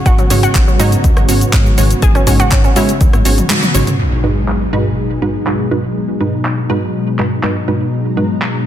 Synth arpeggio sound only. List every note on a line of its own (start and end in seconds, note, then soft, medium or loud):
0.06 0.13 F#4 loud
0.19 0.26 F#3 medium
0.30 0.38 F#3 medium
0.43 0.50 F#4 medium
0.55 0.62 F#3 medium
0.68 0.75 F#3 medium
0.80 1.93 D#4 medium
2.03 2.10 G#4 loud
2.15 2.22 C#4 medium
2.27 2.35 C#4 medium
2.40 2.47 F#4 medium
2.52 2.59 C#4 medium
2.64 2.71 C#4 medium
2.76 3.90 E4 medium